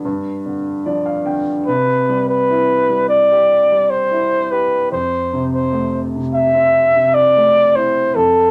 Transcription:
0.05 upright piano G2
0.46 upright piano D3
0.86 upright piano F3 D5
1.06 upright piano F5
1.26 upright piano D3 G5
1.66 upright piano C3, flugelhorn B4
2.09 upright piano G3
2.28 flugelhorn B4
2.50 upright piano E4
2.90 upright piano G3
3.09 flugelhorn D5
3.31 upright piano G4
3.72 upright piano G3
3.90 flugelhorn C5
4.11 upright piano E4
4.51 upright piano G4, flugelhorn B4
4.92 upright piano F2, flugelhorn C5
5.33 upright piano C3
5.54 flugelhorn C5
5.72 upright piano A3
6.15 upright piano C3
6.34 flugelhorn E5
6.55 upright piano C4
6.95 upright piano C3
7.14 flugelhorn D5
7.36 upright piano A3
7.75 upright piano E4, flugelhorn C5
8.15 upright piano F2, flugelhorn A4

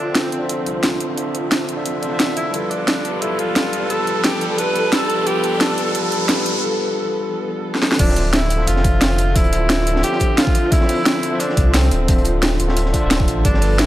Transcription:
Already playing: tine electric piano D3 F3 D4 F4 C5 E5, string section F3 C4, tenor saxophone D4, riser
0.15 tenor saxophone C4, snare, closed hi-hat
0.32 closed hi-hat
0.38 tine electric piano D3 D4 F4
0.43 tine electric piano C5 E5
0.49 closed hi-hat
0.66 sub bass C2, closed hi-hat
0.83 snare, closed hi-hat
1.00 sub bass D1, closed hi-hat
1.14 sub bass D1, tine electric piano D3 D4 F4, closed hi-hat
1.19 tine electric piano C5 E5
1.35 closed hi-hat
1.52 snare, closed hi-hat
1.69 sub bass D1, closed hi-hat
1.76 tine electric piano D3 D4 F4 C5 E5
1.86 closed hi-hat
2.01 sub bass A1, tine electric piano D3 D4 F4 C5 E5, closed hi-hat
2.08 tine electric piano D3 D4 F4
2.13 tine electric piano C5 E5
2.20 snare, closed hi-hat
2.37 tenor saxophone E4, closed hi-hat
2.50 sub bass G1, string section F3 B3 A4, tine electric piano G3 D4 F4, closed hi-hat
2.55 tine electric piano A4 B4
2.71 tenor saxophone D4, closed hi-hat
2.88 snare, closed hi-hat
3.05 closed hi-hat
3.11 tine electric piano G3 D4 F4
3.15 tine electric piano G3 A4 B4
3.20 sub bass B1, tine electric piano D4 F4 A4, tenor saxophone E4, closed hi-hat
3.25 tine electric piano B4
3.39 tenor saxophone F4, closed hi-hat
3.56 snare, closed hi-hat
3.73 closed hi-hat
3.79 tine electric piano G3 D4 F4
3.84 tine electric piano G3 A4 B4
3.88 sub bass G1, tine electric piano D4 F4 A4, tenor saxophone A4, closed hi-hat
3.93 tine electric piano B4
4.07 closed hi-hat
4.24 tenor saxophone G4, snare, closed hi-hat
4.41 closed hi-hat
4.47 tine electric piano G3 D4 F4
4.52 tine electric piano G3 A4 B4
4.57 tine electric piano D4 F4 A4, tenor saxophone B4, closed hi-hat
4.61 tine electric piano B4
4.76 closed hi-hat
4.92 tenor saxophone A4, snare, closed hi-hat
5.10 closed hi-hat
5.15 tine electric piano G3 D4 F4
5.20 tine electric piano G3 A4 B4
5.25 tine electric piano D4 F4 A4, tenor saxophone G4, closed hi-hat
5.30 tine electric piano B4
5.44 closed hi-hat
5.58 tine electric piano G3 D4 F4, tenor saxophone A4, snare, closed hi-hat
5.62 tine electric piano A4 B4
5.78 closed hi-hat
5.92 tine electric piano G3 D4 F4, closed hi-hat
5.96 tine electric piano A4 B4
6.12 sub bass F1, closed hi-hat
6.26 tine electric piano G3 D4 F4, snare, closed hi-hat
6.30 tine electric piano A4 B4
6.46 sub bass G1, closed hi-hat
7.75 snare
7.82 snare
7.91 snare
7.96 sub bass D1, tine electric piano D3 D4 F4, string section F3 C4, tenor saxophone D4, kick, closed hi-hat, crash
8.01 tine electric piano C5 E5
8.08 snare
8.16 closed hi-hat, open hi-hat
8.33 tenor saxophone E4, snare, closed hi-hat
8.42 snare
8.50 closed hi-hat
8.56 tine electric piano D3 D4 F4
8.61 tine electric piano C5 E5
8.67 sub bass F1, tenor saxophone F4, closed hi-hat
8.76 snare
8.84 kick, closed hi-hat
9.01 snare, closed hi-hat
9.10 closed hi-hat
9.18 closed hi-hat
9.32 sub bass D1, tine electric piano D3 F3 D4, tenor saxophone E4, kick, closed hi-hat
9.37 tine electric piano C5 E5
9.44 closed hi-hat
9.53 closed hi-hat
9.69 snare, closed hi-hat
9.79 snare
9.87 closed hi-hat
9.93 tine electric piano D3 D4 F4, snare
9.97 tine electric piano C5 E5
10.03 tenor saxophone G4, closed hi-hat
10.12 snare
10.20 kick, closed hi-hat
10.37 tenor saxophone F4, snare, closed hi-hat
10.47 kick
10.55 closed hi-hat
10.69 tine electric piano D3 F3 D4, tenor saxophone E4, kick, closed hi-hat
10.73 tine electric piano C5 E5
10.81 snare
10.89 closed hi-hat, open hi-hat
11.05 snare, closed hi-hat
11.15 snare
11.23 closed hi-hat
11.29 tine electric piano D3 D4 F4
11.34 tine electric piano C5 E5
11.40 tenor saxophone D4, closed hi-hat
11.49 snare
11.57 sub bass C2, kick, closed hi-hat
11.74 tenor saxophone C4, snare, closed hi-hat
11.83 closed hi-hat
11.91 sub bass D1, closed hi-hat
12.05 sub bass D1, tine electric piano D3 D4 F4, kick, closed hi-hat
12.10 tine electric piano C5 E5
12.18 closed hi-hat
12.25 closed hi-hat
12.42 snare, closed hi-hat
12.52 snare
12.59 sub bass D1, closed hi-hat
12.67 tine electric piano D3 D4 F4 C5 E5, snare
12.77 closed hi-hat
12.86 snare
12.92 tine electric piano D3 D4 F4 C5 E5, kick, closed hi-hat
13.00 sub bass D1, tine electric piano D3 D4 F4
13.04 tine electric piano C5 E5
13.11 snare, closed hi-hat
13.20 kick
13.28 sub bass A1, closed hi-hat
13.42 sub bass G1, string section F3 B3 A4, tine electric piano G3 D4 F4, tenor saxophone D4, kick, closed hi-hat
13.46 tine electric piano A4 B4
13.54 snare
13.61 closed hi-hat, open hi-hat
13.79 tenor saxophone E4, snare, closed hi-hat

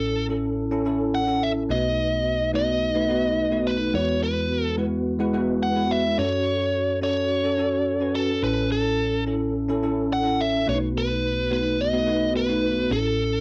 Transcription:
Already playing: tine electric piano A1 A2 C#4 E4 A4, lead electric guitar A4
0.29 tine electric piano C#4 E4 A4
0.71 tine electric piano C#4 E4 A4
0.85 tine electric piano C#4 E4 A4
1.15 lead electric guitar F#5
1.27 tine electric piano C#4 E4 A4
1.43 lead electric guitar E5
1.69 tine electric piano B1 B2 A3 B3 D#4 F#4 B4, lead electric guitar D#5
2.53 tine electric piano A3 B3 D#4 F#4 B4, lead electric guitar D#5
2.95 tine electric piano A3 B3 D#4 F#4 B4
3.09 tine electric piano A3 B3 D#4 F#4 B4
3.51 tine electric piano A3 B3 D#4 F#4 B4
3.67 lead electric guitar B4
3.93 tine electric piano E2 E3 G#3 B3 E4 F#4 B4, lead electric guitar C#5
4.23 lead electric guitar B4
4.63 lead electric guitar A4
4.77 tine electric piano G#3 B3 E4 F#4 B4
5.19 tine electric piano G#3 B3 E4 F#4 B4
5.33 tine electric piano G#3 B3 E4 F#4 B4
5.63 lead electric guitar F#5
5.75 tine electric piano G#3 B3 E4 F#4 B4
5.91 lead electric guitar E5
6.18 tine electric piano F#2 C#4 F#4 A4, lead electric guitar C#5
7.01 tine electric piano C#4 F#4 A4, lead electric guitar C#5
7.44 tine electric piano C#4 F#4 A4
7.58 tine electric piano C#4 F#4 A4
8.00 tine electric piano C#4 F#4 B4
8.15 lead electric guitar A4
8.42 tine electric piano A1 A2 C#4 E4 A4, lead electric guitar B4
8.72 lead electric guitar A4
9.26 tine electric piano C#4 E4 A4
9.69 tine electric piano C#4 E4 A4
9.83 tine electric piano C#4 E4 A4
10.13 lead electric guitar F#5
10.24 tine electric piano C#4 E4 A4
10.41 lead electric guitar E5
10.67 tine electric piano B1 B2 A3 B3 C#4 F#4 B4, lead electric guitar C#5
10.74 tine electric piano D#4
10.98 lead electric guitar B4
11.50 tine electric piano A3 B3 D#4 F#4 B4, lead electric guitar B4
11.81 lead electric guitar D#5
11.93 tine electric piano A3 B3 D#4 F#4 B4
12.06 tine electric piano A3 B3 D#4 F#4 B4
12.37 lead electric guitar B4
12.48 tine electric piano A3 B3 D#4 F#4 B4
12.90 tine electric piano A1 A2 C#4 E4 A4, lead electric guitar A4

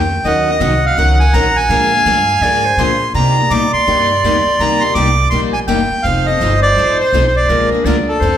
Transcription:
Already playing: upright bass F2, accordion G5
0.24 upright bass D#2, steel-string acoustic guitar D#3 F#3 C#4 D#4 A#4, clarinet D#5, accordion F#5
0.47 steel-string acoustic guitar C#4 D#4 A#4, accordion D#5
0.60 upright bass C2, steel-string acoustic guitar D#3 F#3 C#4 D#4 A#4, clarinet F#5
0.86 accordion F5
0.97 upright bass C#2, steel-string acoustic guitar D#3 F#3 C#4 D#4 A#4, accordion F#5
1.20 accordion G#5
1.33 upright bass A#1, steel-string acoustic guitar D#3 F#3 C#4 D#4 A#4, accordion A#5
1.56 accordion G#5
1.69 upright bass A#2, steel-string acoustic guitar D3 F3 G#3 A#3 D4 F4 G#4 A#4, clarinet F5
1.92 steel-string acoustic guitar A#3 D4 G#4
2.05 upright bass G2, steel-string acoustic guitar D3 F3 G#3 A#3 D4 F4 G#4 A#4
2.41 upright bass G#2, steel-string acoustic guitar D3 F3 G#3 A#3 D4 F4 G#4 A#4, clarinet D5
2.65 clarinet C5
2.77 upright bass A#2, steel-string acoustic guitar D3 F3 G#3 A#3 D4 F4 G#4 A#4, accordion C6
3.14 upright bass C3, steel-string acoustic guitar C3 G3 A#3 D#4 G4, clarinet D5, accordion A#5
3.36 steel-string acoustic guitar A#3 D#4 G4
3.50 upright bass A#2, steel-string acoustic guitar C3 G3 A#3 D#4 G4, accordion D6
3.73 accordion C6, muted upright bass stroke
3.87 upright bass G2, steel-string acoustic guitar C3 G3 A#3 D#4 G4
4.24 upright bass F2, steel-string acoustic guitar C3 G3 A#3 D#4 G4, accordion C6
4.46 muted upright bass stroke
4.59 upright bass D#2, steel-string acoustic guitar C3 G3 A#3 D#4 G4, accordion A#5
4.81 steel-string acoustic guitar A#3 D#4 G4, accordion C6
4.94 upright bass C2, steel-string acoustic guitar C3 G3 A#3 D#4 G4, accordion D6
5.30 upright bass A#1, steel-string acoustic guitar C3 G3 A#3 D#4 G4, accordion C6
5.53 accordion G#5
5.68 upright bass F#1, steel-string acoustic guitar C3 G3 A#3 D#4 G4, accordion G5
5.90 muted upright bass stroke
6.03 upright bass F1, steel-string acoustic guitar F3 C4 D#4 A4, clarinet C5, accordion F5
6.26 steel-string acoustic guitar C4 D#4 A4, accordion D#5
6.40 upright bass G1, steel-string acoustic guitar F3 C4 D#4 A4
6.62 accordion D5
6.76 upright bass A1, steel-string acoustic guitar F3 C4 D#4 A4
7.00 accordion C5
7.12 upright bass B1, steel-string acoustic guitar F3 C4 D#4 A4
7.27 accordion C5
7.36 accordion D5
7.49 upright bass A#1, steel-string acoustic guitar D3 F3 G#3 A#3 D4 F4 G#4 A#4, clarinet A#4
7.71 steel-string acoustic guitar A#3 D4 G#4, muted upright bass stroke
7.84 upright bass D2, steel-string acoustic guitar D3 F3 G#3 A#3 D4 F4 G#4 A#4, accordion A#4, clarinet D5
8.09 accordion A4
8.20 upright bass F2, steel-string acoustic guitar F3 C4 D#4 A4, clarinet C5

